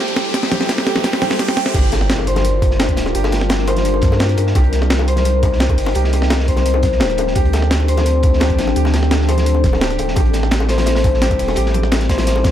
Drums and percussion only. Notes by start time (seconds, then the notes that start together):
0.08 closed hi-hat
0.16 snare, closed hi-hat, open hi-hat
0.34 kick, snare, closed hi-hat
0.43 snare, closed hi-hat
0.52 snare, closed hi-hat, high conga
0.61 snare
0.69 snare, closed hi-hat
0.78 snare
0.87 snare, closed hi-hat
0.95 snare, high conga
1.03 kick, snare, closed hi-hat
1.13 snare, closed hi-hat
1.22 snare, closed hi-hat, high conga
1.30 snare, closed hi-hat
1.39 kick, snare, closed hi-hat
1.48 snare, closed hi-hat
1.57 snare, closed hi-hat
1.66 snare
1.74 kick, closed hi-hat, crash, high bongo
1.84 closed hi-hat
1.92 snare, closed hi-hat, high bongo
2.01 snare
2.09 snare, closed hi-hat
2.18 high bongo
2.27 closed hi-hat
2.36 snare, closed hi-hat, high bongo, high conga
2.45 closed hi-hat
2.62 kick, closed hi-hat, high bongo
2.71 snare
2.79 snare, closed hi-hat, high bongo
2.89 kick, closed hi-hat
2.97 snare, closed hi-hat
3.06 snare, high bongo
3.15 closed hi-hat
3.24 snare, high bongo
3.32 snare, closed hi-hat
3.41 snare
3.49 snare, closed hi-hat, high bongo
3.58 snare
3.67 closed hi-hat, high bongo
3.76 snare, closed hi-hat, high conga
3.85 closed hi-hat
3.94 high bongo
4.02 kick, snare, closed hi-hat, high conga
4.12 snare, high bongo
4.19 snare, closed hi-hat
4.29 snare, closed hi-hat
4.37 closed hi-hat, high bongo
4.47 snare
4.55 kick, closed hi-hat, high bongo
4.64 closed hi-hat
4.72 snare, closed hi-hat
4.82 snare, high bongo
4.90 snare, closed hi-hat
4.99 high bongo
5.08 closed hi-hat
5.16 snare, closed hi-hat, high conga
5.25 closed hi-hat, high bongo
5.43 kick, closed hi-hat, high bongo
5.52 snare
5.60 snare, closed hi-hat
5.69 kick, closed hi-hat, high bongo
5.78 closed hi-hat, open hi-hat
5.86 snare, high bongo
5.95 closed hi-hat
6.04 snare
6.13 closed hi-hat, high bongo
6.22 snare
6.30 snare, closed hi-hat, high bongo
6.40 snare
6.48 kick, closed hi-hat
6.56 snare, closed hi-hat, high bongo, high conga
6.66 closed hi-hat
6.74 high bongo
6.83 kick, snare, closed hi-hat, high conga
6.92 snare
7.00 snare, closed hi-hat, high bongo
7.10 snare, closed hi-hat
7.18 closed hi-hat, high bongo
7.27 snare
7.35 kick, closed hi-hat, high bongo
7.45 closed hi-hat
7.53 snare, closed hi-hat, high bongo
7.62 snare
7.71 snare, closed hi-hat
7.80 high bongo
7.88 closed hi-hat
7.97 snare, closed hi-hat, high bongo, high conga
8.06 closed hi-hat
8.23 kick, closed hi-hat, high bongo
8.33 snare
8.40 snare, closed hi-hat, high bongo
8.50 kick, closed hi-hat
8.59 snare, closed hi-hat
8.67 snare, high bongo
8.76 closed hi-hat
8.85 snare, high bongo
8.94 snare, closed hi-hat
9.03 snare
9.11 snare, closed hi-hat, high bongo
9.21 snare
9.29 closed hi-hat, high bongo
9.38 snare, closed hi-hat, high conga
9.46 closed hi-hat
9.55 high bongo
9.64 kick, snare, closed hi-hat, high conga
9.73 snare, high bongo
9.81 snare, closed hi-hat
9.90 snare, closed hi-hat
9.99 closed hi-hat, high bongo
10.08 snare
10.16 kick, closed hi-hat, high bongo
10.25 closed hi-hat
10.33 snare, closed hi-hat
10.43 snare, high bongo
10.51 snare, closed hi-hat
10.60 high bongo
10.69 snare, closed hi-hat
10.78 snare, closed hi-hat, high conga
10.86 snare, closed hi-hat, high bongo
10.95 snare, closed hi-hat
11.04 kick, closed hi-hat, high bongo
11.14 snare
11.22 snare, closed hi-hat
11.31 kick, closed hi-hat, high bongo
11.39 closed hi-hat, open hi-hat
11.48 snare, high bongo
11.56 closed hi-hat
11.66 snare
11.74 closed hi-hat, high bongo, high conga
11.83 snare
11.92 snare, closed hi-hat, high bongo
12.00 snare, closed hi-hat
12.09 kick, snare, closed hi-hat
12.18 snare, closed hi-hat, high bongo, high conga
12.27 snare, closed hi-hat
12.36 high bongo
12.44 kick, snare, closed hi-hat, high conga